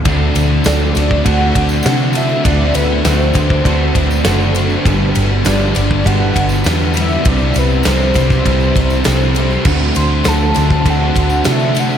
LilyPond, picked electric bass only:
\new Staff \with { instrumentName = "Picked electric bass" } { \clef bass \time 4/4 \key d \mixolydian \tempo 4 = 100 d,8 d,8 d,8 d,8 d,8 d,8 c4 | d,8 d,8 d,8 d,8 d,8 d,8 fis,,4 | g,,8 g,,8 g,,8 g,,8 g,,8 g,,8 e,4 | c,8 c,8 c,8 c,8 c,8 c,8 c,4 |
d,8 d,8 d,8 d,8 d,8 d,8 c4 | }